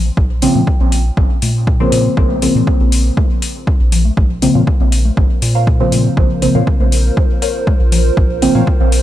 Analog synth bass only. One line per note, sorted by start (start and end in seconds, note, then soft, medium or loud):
0.00 0.11 A#1 medium
0.17 0.48 A#1 loud
0.55 0.63 A#2 medium
0.80 1.11 A#1 loud
1.17 1.26 A#1 medium
1.42 1.86 A#2 medium
1.92 2.09 A#2 medium
2.17 2.48 A#1 medium
2.55 2.63 A#2 medium
2.80 3.11 A#1 loud
3.80 4.11 A#1 loud
4.17 4.48 A#1 medium
4.55 4.63 A#2 medium
4.80 5.11 A#1 loud
5.17 5.26 A#1 medium
5.42 5.86 A#2 medium
5.92 6.09 A#2 medium
6.17 6.48 A#1 medium
6.55 6.63 A#2 medium
6.80 7.11 A#1 loud
7.80 8.11 A#1 loud
8.17 8.48 A#1 medium
8.55 8.63 A#2 medium
8.80 9.02 A#1 loud